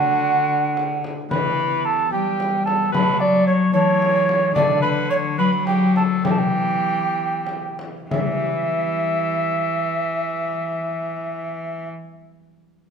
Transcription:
0.00 1.08 D3 medium
0.00 1.33 D3 medium
0.00 1.32 A3 medium
0.00 1.32 D4 medium
0.00 1.04 F#4 medium
0.00 1.33 F#4 medium
0.00 1.33 A4 medium
0.00 1.02 F#5 loud
0.77 frame drum medium
1.04 frame drum medium
1.29 2.96 E3 medium
1.29 2.09 E3 medium
1.29 2.09 B3 soft
1.29 2.10 G4 medium
1.29 1.82 B4 medium
1.29 1.87 B5 medium
1.29 frame drum medium
1.85 2.12 A4 medium
1.85 2.11 A5 medium
2.10 2.92 G3 medium
2.10 2.96 G3 medium
2.10 2.95 B3 medium
2.10 2.95 G4 medium
2.10 2.65 G4 medium
2.10 2.67 G5 loud
2.40 frame drum medium
2.66 2.92 A4 medium
2.66 2.93 A5 medium
2.66 frame drum medium
2.91 3.72 F#3 medium
2.91 5.37 F#3 medium
2.91 3.70 A3 medium
2.91 3.72 A4 medium
2.91 3.19 B4 medium
2.91 3.22 B5 loud
2.91 frame drum medium
3.20 3.46 D5 loud
3.47 3.73 C#5 medium
3.47 3.53 C#5 loud
3.72 4.57 E3 medium
3.72 4.54 E3 medium
3.72 6.26 A3 medium
3.72 4.52 A4 medium
3.72 4.53 C#5 loud
4.02 frame drum medium
4.29 frame drum medium
4.52 5.40 D3 medium
4.52 6.27 D3 medium
4.52 6.25 D4 medium
4.52 6.26 A4 medium
4.52 4.81 D5 loud
4.52 4.82 D5 loud
4.52 frame drum medium
4.82 5.11 B4 loud
4.82 4.88 B5 loud
5.10 5.38 C#5 loud
5.10 5.17 C#5 loud
5.38 6.27 F#3 medium
5.38 6.26 F#3 medium
5.38 5.51 B4 medium
5.38 5.66 B5 loud
5.67 5.95 G4 medium
5.67 5.95 G5 loud
5.67 frame drum medium
5.96 6.24 A4 medium
5.96 6.03 A5 medium
5.96 frame drum medium
6.22 8.10 E3 medium
6.22 7.87 E3 medium
6.22 8.24 B3 medium
6.22 8.38 G4 medium
6.22 7.76 G4 medium
6.22 6.33 G5 medium
6.22 frame drum medium
6.31 6.40 A5 medium
6.39 7.78 G5 medium
7.47 frame drum soft
7.79 frame drum medium
8.11 11.88 E3 medium
8.11 12.01 E3 medium
8.11 11.88 E5 medium
8.11 frame drum medium
8.18 11.95 G3 medium
8.25 12.02 B3 medium
8.32 12.09 E4 medium
8.39 12.16 G4 medium
8.46 12.23 B4 medium

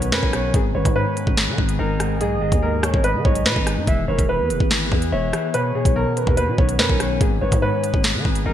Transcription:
0.00 0.14 B1 loud
0.00 0.32 B2 medium
0.00 3.83 D#3 medium
0.00 0.52 B3 medium
0.00 0.52 C#4 medium
0.00 closed hi-hat medium
0.12 0.22 F#2 loud
0.12 0.54 C#4 loud
0.12 0.32 A#4 medium
0.12 0.52 B4 medium
0.12 snare loud
0.23 0.53 B1 loud
0.23 kick loud
0.33 0.54 B2 medium
0.33 0.53 C#5 medium
0.33 cross-stick medium
0.33 closed hi-hat medium
0.54 0.74 G#1 loud
0.54 0.74 G#2 medium
0.54 3.84 B3 medium
0.54 3.84 G#4 medium
0.54 0.71 G#4 medium
0.54 kick loud
0.54 closed hi-hat medium
0.75 0.85 G#1 loud
0.75 0.95 G#2 medium
0.75 0.95 B4 medium
0.75 0.91 C#5 medium
0.85 1.05 G#2 loud
0.85 kick loud
0.85 closed hi-hat medium
0.96 1.36 G#2 medium
0.96 1.75 B4 medium
0.96 1.35 C#5 medium
1.17 closed hi-hat medium
1.27 1.49 G#1 loud
1.27 kick loud
1.37 1.57 G#2 medium
1.37 snare loud
1.37 closed hi-hat medium
1.48 1.58 D#3 loud
1.58 1.78 G#1 loud
1.58 1.99 G#2 medium
1.58 kick loud
1.69 closed hi-hat medium
1.79 2.22 G#1 loud
1.79 2.83 D#4 loud
1.79 2.18 A#4 medium
2.00 2.20 G#2 medium
2.00 cross-stick medium
2.00 closed hi-hat medium
2.21 2.38 B1 loud
2.21 2.40 G#2 medium
2.21 2.37 G#4 loud
2.21 2.80 D#5 loud
2.21 closed hi-hat medium
2.36 2.51 G#1 loud
2.41 2.61 G#2 medium
2.41 2.58 G#4 medium
2.52 2.92 D#2 loud
2.52 kick loud
2.52 closed hi-hat medium
2.62 3.03 G#2 medium
2.62 3.02 A#4 medium
2.83 3.03 C#5 medium
2.83 cross-stick loud
2.83 closed hi-hat medium
2.94 3.16 G#1 loud
2.94 kick loud
3.04 3.24 G#2 medium
3.04 3.21 B4 medium
3.04 3.83 D#5 loud
3.04 closed hi-hat medium
3.14 3.24 D#3 loud
3.25 3.47 B1 loud
3.25 3.65 G#2 medium
3.25 3.41 C#5 medium
3.25 kick loud
3.35 closed hi-hat medium
3.46 3.56 B2 loud
3.46 3.87 D#4 loud
3.46 3.85 B4 medium
3.46 snare loud
3.56 3.78 G#1 loud
3.56 kick loud
3.67 3.87 G#2 medium
3.67 cross-stick medium
3.67 closed hi-hat loud
3.77 3.87 G#2 loud
3.87 4.07 E1 loud
3.87 4.07 E3 medium
3.87 5.52 E3 medium
3.87 5.52 B3 medium
3.87 5.52 G#4 medium
3.87 4.04 E5 medium
3.87 kick loud
3.87 closed hi-hat medium
4.08 4.18 E1 loud
4.08 4.28 E3 medium
4.08 4.28 A#4 medium
4.08 4.25 C#5 medium
4.19 4.41 E1 loud
4.19 kick loud
4.19 closed hi-hat medium
4.29 4.70 E3 medium
4.29 5.08 B4 medium
4.29 4.68 B4 medium
4.39 4.51 E2 loud
4.50 4.60 E1 loud
4.50 closed hi-hat medium
4.60 4.90 G#1 loud
4.60 kick loud
4.71 4.90 E3 medium
4.71 snare loud
4.71 closed hi-hat medium
4.92 5.12 E2 loud
4.92 5.32 E3 medium
4.92 kick loud
5.02 closed hi-hat medium
5.12 5.32 E1 loud
5.12 5.52 C#5 medium
5.12 5.54 E5 loud
5.33 5.54 E3 medium
5.33 cross-stick medium
5.33 closed hi-hat medium
5.54 5.74 B2 medium
5.54 8.53 D#3 medium
5.54 7.19 B3 medium
5.54 7.19 C#4 medium
5.54 5.71 B4 medium
5.54 6.13 C#5 loud
5.54 closed hi-hat medium
5.75 5.94 B2 medium
5.75 5.92 G#4 medium
5.85 6.05 B1 loud
5.85 kick medium
5.85 closed hi-hat medium
5.96 6.36 B2 medium
5.96 6.35 A#4 medium
6.17 6.76 B4 loud
6.17 closed hi-hat medium
6.27 6.49 D#2 loud
6.27 kick medium
6.37 6.57 B2 medium
6.37 6.54 B4 medium
6.37 closed hi-hat medium
6.48 6.58 B2 loud
6.58 6.81 B1 loud
6.58 6.99 B2 medium
6.58 6.75 C#5 medium
6.58 kick loud
6.69 closed hi-hat medium
6.79 6.89 F#2 loud
6.79 7.21 C#4 loud
6.79 6.99 A#4 medium
6.79 7.18 B4 medium
6.79 snare loud
6.89 7.19 B1 loud
6.89 kick loud
7.00 7.21 B2 medium
7.00 7.20 C#5 medium
7.00 cross-stick medium
7.00 closed hi-hat medium
7.21 7.41 G#1 loud
7.21 7.40 G#2 medium
7.21 8.53 B3 medium
7.21 8.53 G#4 loud
7.21 7.37 G#4 medium
7.21 kick loud
7.21 closed hi-hat medium
7.41 7.51 G#1 loud
7.41 7.61 G#2 medium
7.41 7.61 B4 medium
7.41 7.58 C#5 medium
7.52 7.72 G#2 loud
7.52 kick loud
7.52 closed hi-hat medium
7.62 8.03 G#2 medium
7.62 8.42 B4 medium
7.62 8.02 C#5 medium
7.84 closed hi-hat medium
7.94 8.16 G#1 loud
7.94 kick loud
8.04 8.24 G#2 medium
8.04 snare loud
8.04 closed hi-hat medium
8.14 8.24 D#3 loud
8.25 8.45 G#1 loud
8.25 8.53 G#2 medium
8.25 kick loud
8.35 closed hi-hat medium
8.46 8.53 G#1 loud
8.46 8.53 D#4 loud
8.46 8.53 A#4 medium

